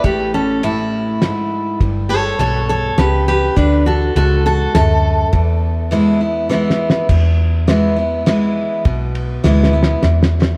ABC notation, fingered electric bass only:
X:1
M:3/4
L:1/8
Q:1/4=102
K:Emix
V:1 name="Fingered electric bass" clef=bass
A,,,6 | =G,,,2 B,,,2 C,,2 | D,,2 C,,2 D,,2 | E,,6 |
E,,6 | B,,,2 D,,2 E,,2 |]